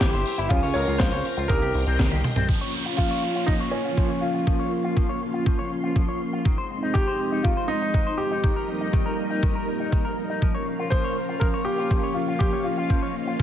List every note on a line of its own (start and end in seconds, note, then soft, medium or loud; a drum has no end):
0.00 0.12 G1 loud
0.00 0.13 E3 medium
0.00 0.47 E4 medium
0.00 0.48 G4 medium
0.00 0.52 G4 loud
0.00 0.48 C5 medium
0.00 0.48 E5 medium
0.00 0.48 C6 medium
0.00 kick loud
0.00 snare loud
0.00 closed hi-hat medium
0.13 0.24 G1 medium
0.13 0.25 C5 medium
0.13 closed hi-hat medium
0.26 open hi-hat loud
0.38 0.49 G1 medium
0.38 0.50 E4 loud
0.38 closed hi-hat medium
0.49 0.61 C#2 loud
0.49 0.62 F3 medium
0.49 1.49 C#4 medium
0.49 0.74 C#4 medium
0.49 0.75 F4 loud
0.49 2.47 A#4 medium
0.49 1.49 F5 medium
0.49 1.49 A#5 medium
0.49 kick loud
0.49 closed hi-hat medium
0.63 0.74 C#2 medium
0.63 0.75 C#5 medium
0.63 open hi-hat medium
0.74 0.86 C#2 loud
0.74 0.99 A#4 medium
0.74 1.00 C#5 loud
0.74 open hi-hat loud
0.88 0.98 C#2 medium
0.88 0.99 F4 medium
0.88 closed hi-hat medium
0.98 1.11 C#2 loud
0.98 1.12 F3 medium
0.98 1.46 F4 medium
0.98 1.50 C5 loud
0.98 kick loud
0.98 snare loud
0.98 closed hi-hat medium
1.12 1.23 C#2 medium
1.12 1.24 C#5 medium
1.12 closed hi-hat medium
1.25 open hi-hat loud
1.37 1.48 C#2 medium
1.37 1.49 F4 loud
1.37 closed hi-hat medium
1.48 1.60 C2 loud
1.48 1.61 D#3 medium
1.48 2.20 G4 medium
1.48 2.19 A#4 loud
1.48 2.48 D#5 medium
1.48 2.48 G5 medium
1.48 2.48 C6 medium
1.48 kick loud
1.48 closed hi-hat medium
1.62 1.73 C2 medium
1.62 1.74 G4 medium
1.62 closed hi-hat medium
1.74 1.85 C2 medium
1.74 open hi-hat loud
1.87 1.98 C2 medium
1.87 1.99 C4 loud
1.87 closed hi-hat medium
1.99 2.10 C2 loud
1.99 2.11 D#3 medium
1.99 kick loud
1.99 snare loud
1.99 closed hi-hat medium
1.99 high tom medium
2.11 2.22 C2 medium
2.11 2.23 G4 medium
2.11 closed hi-hat medium
2.11 high tom medium
2.24 open hi-hat loud
2.24 mid tom medium
2.36 2.47 C2 medium
2.36 2.48 C4 loud
2.36 closed hi-hat medium
2.36 mid tom medium
2.49 6.41 F3 medium
2.49 2.61 F3 medium
2.49 6.41 A#3 medium
2.49 6.41 C#4 medium
2.49 6.41 F4 medium
2.49 4.45 C#5 medium
2.49 6.41 F5 medium
2.49 kick loud
2.49 downlifter medium
2.61 2.73 C#5 medium
2.86 2.98 F4 medium
2.97 3.10 F3 medium
2.97 3.44 F4 loud
2.97 kick loud
3.11 3.23 C#5 medium
3.36 3.47 F4 medium
3.46 3.60 F3 medium
3.46 3.52 D#4 medium
3.46 kick loud
3.60 3.72 C#5 medium
3.71 4.23 C#4 medium
3.85 3.97 F4 medium
3.97 4.09 F3 medium
3.97 kick loud
4.10 4.22 C#5 medium
4.21 5.66 F4 medium
4.35 4.46 F4 medium
4.47 4.59 F3 medium
4.47 8.40 C6 medium
4.47 kick loud
4.59 4.71 C#5 medium
4.84 4.96 F4 medium
4.97 5.08 F3 medium
4.97 kick loud
5.09 5.21 C#5 medium
5.34 5.46 F4 medium
5.46 5.58 F3 medium
5.46 kick loud
5.59 5.70 C#5 medium
5.84 5.95 F4 medium
5.96 6.08 F3 medium
5.96 kick loud
6.08 6.20 C#5 medium
6.33 6.45 F4 medium
6.45 10.38 F2 medium
6.45 6.57 D#3 medium
6.45 8.42 G#3 medium
6.45 8.42 C4 medium
6.45 10.38 D#4 medium
6.45 10.38 D#5 medium
6.45 kick loud
6.58 6.70 C5 medium
6.83 6.94 D#4 medium
6.94 7.07 D#3 medium
6.94 7.45 G4 loud
6.94 kick loud
7.07 7.19 C5 medium
7.32 7.44 D#4 medium
7.43 7.56 D#3 medium
7.43 7.67 F4 medium
7.43 kick loud
7.57 7.69 C5 medium
7.68 8.20 D#4 loud
7.82 7.94 D#4 medium
7.94 8.06 D#3 medium
7.94 kick loud
8.07 8.18 C5 medium
8.18 9.63 G4 medium
8.31 8.43 D#4 medium
8.44 8.56 D#3 medium
8.44 10.40 G3 medium
8.44 13.43 A#3 medium
8.44 10.40 A#4 medium
8.44 kick loud
8.56 8.68 A#4 medium
8.81 8.93 D#4 medium
8.93 9.05 D#3 medium
8.93 kick loud
9.06 9.18 A#4 medium
9.30 9.42 D#4 medium
9.43 9.55 D#3 medium
9.43 kick loud
9.55 9.67 A#4 medium
9.80 9.92 D#4 medium
9.92 10.04 D#3 medium
9.92 kick loud
10.05 10.17 A#4 medium
10.30 10.41 D#4 medium
10.42 13.43 F3 medium
10.42 10.54 F3 medium
10.42 13.43 C#4 medium
10.42 13.43 F4 medium
10.42 12.38 A#4 medium
10.42 13.43 F5 medium
10.42 kick loud
10.55 10.66 C#5 medium
10.79 10.91 F4 medium
10.90 11.04 F3 medium
10.90 11.42 C5 loud
10.90 kick loud
11.04 11.16 C#5 medium
11.29 11.41 F4 medium
11.40 11.53 F3 medium
11.40 11.45 A#4 medium
11.40 kick loud
11.54 11.65 C#5 medium
11.65 12.16 G4 medium
11.79 11.90 F4 medium
11.91 12.03 F3 medium
11.91 kick loud
12.03 12.15 C#5 medium
12.14 12.38 F4 medium
12.28 12.40 F4 medium
12.39 12.52 F3 medium
12.39 12.65 G4 medium
12.39 13.43 D#5 medium
12.39 kick loud
12.53 12.65 C#5 medium
12.64 13.43 F4 medium
12.78 12.89 F4 medium
12.90 13.02 F3 medium
12.90 kick loud
13.03 13.14 C#5 medium
13.27 13.39 F4 medium